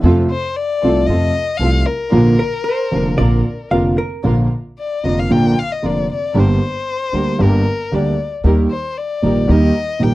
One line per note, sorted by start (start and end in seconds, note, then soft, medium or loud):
0.03 0.25 F2 medium
0.03 0.26 F2 medium
0.03 0.26 C3 medium
0.03 0.26 F3 medium
0.03 0.26 A3 medium
0.03 0.25 C4 medium
0.03 0.25 F4 medium
0.03 0.27 F4 medium
0.03 0.25 A4 medium
0.31 0.58 C5 medium
0.56 1.08 D5 medium
0.81 1.05 C2 medium
0.81 1.05 C3 medium
0.81 1.05 F3 soft
0.81 1.05 A3 soft
0.81 1.04 C4 soft
0.81 1.04 F4 soft
0.81 1.05 F4 soft
0.81 1.04 A4 medium
1.06 1.30 F2 medium
1.06 1.31 F2 medium
1.06 1.31 C3 soft
1.06 1.31 F3 medium
1.06 1.31 A3 soft
1.06 1.30 C4 soft
1.06 1.30 F4 soft
1.06 1.31 F4 soft
1.06 1.30 A4 medium
1.06 1.59 D#5 medium
1.58 1.82 C2 medium
1.58 1.83 C2 medium
1.58 1.83 C3 medium
1.58 1.82 F3 soft
1.58 1.83 A3 soft
1.58 1.82 C4 soft
1.58 1.82 F4 soft
1.58 1.83 F4 soft
1.58 1.82 A4 medium
1.58 1.88 F5 medium
1.86 3.71 A#4 medium
2.12 2.34 A#1 medium
2.12 2.35 A#1 medium
2.12 2.34 A#2 medium
2.12 2.34 D3 medium
2.12 2.35 F3 medium
2.12 2.34 A#3 medium
2.12 2.35 D4 medium
2.12 2.35 F4 medium
2.12 2.35 A#4 medium
2.39 2.66 A#4 medium
2.64 3.17 C5 medium
2.91 3.14 F1 soft
2.91 3.14 F1 medium
2.91 3.14 F2 soft
2.91 3.14 D3 soft
2.91 3.14 F3 soft
2.91 3.14 A#3 soft
2.91 3.14 D4 soft
2.91 3.14 F4 soft
2.91 3.14 A#4 soft
3.17 3.40 A#1 medium
3.17 3.41 A#1 medium
3.17 3.40 A#2 medium
3.17 3.40 D3 soft
3.17 3.40 F3 soft
3.17 3.40 A#3 soft
3.17 3.40 D4 soft
3.17 3.40 F4 soft
3.17 3.40 A#4 medium
3.17 3.71 D5 medium
3.71 3.94 F1 medium
3.71 3.94 F1 soft
3.71 3.94 F2 soft
3.71 3.94 D3 soft
3.71 3.94 F3 soft
3.71 3.94 A#3 soft
3.71 3.94 D4 soft
3.71 3.94 F4 soft
3.71 3.94 A#4 medium
3.71 3.96 F5 medium
3.98 4.23 A#4 medium
4.23 4.46 A#1 medium
4.23 4.46 A#2 medium
4.23 4.46 D3 medium
4.23 4.46 F3 medium
4.23 4.46 A#3 soft
4.23 4.46 D4 medium
4.23 4.46 F4 medium
4.23 4.46 A#4 medium
4.79 5.06 D5 medium
5.04 5.26 F1 soft
5.04 5.26 F2 soft
5.04 5.26 D3 soft
5.04 5.26 F3 soft
5.04 5.26 A#3 soft
5.04 5.26 D4 soft
5.04 5.26 F4 soft
5.04 5.26 A#4 soft
5.04 5.20 D#5 medium
5.19 5.33 F5 medium
5.30 5.52 A#1 medium
5.30 5.52 A#2 medium
5.30 5.52 D3 medium
5.30 5.52 F3 medium
5.30 5.52 A#3 medium
5.30 5.52 D4 medium
5.30 5.52 F4 medium
5.30 5.52 A#4 medium
5.30 5.61 G5 medium
5.59 5.73 F5 medium
5.72 5.88 D#5 medium
5.82 6.05 F1 soft
5.82 6.05 F2 soft
5.82 6.05 D3 soft
5.82 6.04 F3 soft
5.82 6.05 A#3 soft
5.82 6.04 D4 soft
5.82 6.04 F4 soft
5.82 6.05 F4 soft
5.82 6.05 A#4 soft
5.82 6.10 D5 medium
6.12 6.41 D5 medium
6.34 6.57 G1 medium
6.34 6.57 G2 medium
6.34 6.57 D3 medium
6.34 6.57 G3 medium
6.34 6.57 A#3 medium
6.34 6.56 D4 medium
6.34 6.56 G4 medium
6.34 6.57 G4 medium
6.34 6.56 A#4 medium
6.39 7.44 C5 medium
7.13 7.35 D2 soft
7.13 7.35 D3 soft
7.13 7.35 G3 soft
7.13 7.35 A#3 soft
7.13 7.35 D4 soft
7.13 7.35 G4 soft
7.13 7.36 G4 soft
7.13 7.35 A#4 soft
7.38 7.61 G1 medium
7.38 7.61 G2 medium
7.38 7.61 D3 medium
7.38 7.61 G3 medium
7.38 7.61 A#3 medium
7.38 7.61 D4 medium
7.38 7.61 G4 medium
7.38 7.61 A#4 medium
7.38 7.96 A#4 medium
7.92 8.13 D2 soft
7.92 8.14 D2 medium
7.92 8.14 D3 soft
7.92 8.13 G3 soft
7.92 8.14 A#3 soft
7.92 8.13 D4 soft
7.92 8.13 G4 soft
7.92 8.14 G4 soft
7.92 8.14 A#4 soft
7.92 8.32 D5 medium
8.44 8.66 D#2 medium
8.44 8.66 D#3 medium
8.44 8.66 G3 medium
8.44 8.66 A#3 medium
8.44 8.66 D#4 medium
8.44 8.66 G4 medium
8.44 8.66 A#4 medium
8.70 8.99 C5 medium
8.97 9.52 D5 medium
9.22 9.44 A#1 soft
9.22 9.45 A#1 medium
9.22 9.44 A#2 soft
9.22 9.44 D#3 soft
9.22 9.44 G3 soft
9.22 9.44 A#3 soft
9.22 9.44 D#4 soft
9.22 9.44 G4 soft
9.22 9.44 A#4 soft
9.48 9.70 D#2 medium
9.48 9.70 D#3 medium
9.48 9.70 G3 medium
9.48 9.70 A#3 medium
9.48 9.70 D#4 medium
9.48 9.70 G4 medium
9.48 9.70 A#4 medium
9.48 10.05 D#5 medium
9.99 10.14 A#1 soft
9.99 10.14 A#1 medium
9.99 10.14 A#2 medium
9.99 10.14 D#3 soft
9.99 10.14 G3 soft
9.99 10.14 A#3 soft
9.99 10.14 D#4 soft
9.99 10.14 G4 soft
9.99 10.14 A#4 soft
9.99 10.14 G5 medium